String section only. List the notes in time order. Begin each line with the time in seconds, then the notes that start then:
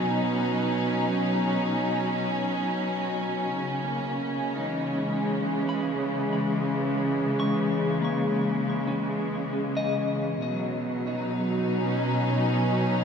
Already playing: B2 F#3 C#4 D#4
3.56 C#3
4.52 G#3
4.58 E3
10.37 B2
10.49 F#3
11.04 D#4
11.80 C#4